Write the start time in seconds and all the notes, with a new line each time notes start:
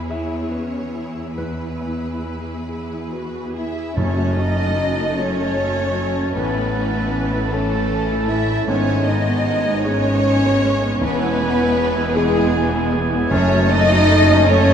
Already playing: E2 B3 E4 G#4 G#5
0.09 E4 G#4 C#5 E5
0.51 C#4 B4
0.94 E4
1.37 E2 E4 G#4 B4
1.81 B3
2.24 E4
2.68 E4 G#4
3.12 F#4 B4
3.54 E4 G#4 E5
3.95 F#1 F#2 F#3 C#4 C#5 A5
4.16 A3 F#4
4.35 F#3 C#4 D#4 D#5
4.57 A3 F#4
4.77 F#3 C#4
4.97 A3 F#4
5.16 F#3 A3 C#4 C#5 A5
5.37 A3 F#4
5.58 F#3 C#4
5.77 A3 F#4
5.96 F#3 C#4
6.16 A3 F#4
6.35 A1 A2 E3 B3 C#4 B4 A5
6.55 A3 E4
6.75 E3 C#4
6.94 A3 E4
7.13 E3 C#4
7.33 A3 E4
7.50 E3 A3 C#4 A4 C#5 A5
7.72 A3 E4
7.93 E3 C#4
8.11 A3 E4
8.28 E3 C#4 E4 E5
8.50 A3 E4
8.67 G#1 G#2 G#3 B3 C#4 C#5 G#5
8.87 G#3 B3
9.06 G#3 B3 D#4 D#5
9.27 G#3 B3
9.45 G#3 B3
9.65 G#3 B3
9.83 G#3 B3 C#4 D#4 G#4 C#5
10.04 G#3 B3
10.24 G#3 B3
10.43 G#3 B3
10.63 G#3 B3
10.83 G#3 B3
11.01 E1 E2 E3 B3 B4 G#5
11.21 G#3 E4
11.40 E3 B3
11.60 G#3 E4
11.78 E3 B3
11.98 G#3 E4
12.14 E3 G#3 B3 E4 G#4 G#5
12.36 G#3 E4
12.54 E3 B3
12.74 G#3 E4
12.93 E3 B3
13.13 G#3 E4
13.30 F#1 F#2 A3 C#4 C#5 A5
13.50 F#3 C#4
13.70 A3 D#4 D#5
13.89 F#3 C#4
14.09 A3
14.29 F#3 C#4
14.47 A3 C#4 C#5 A5
14.69 F#3 C#4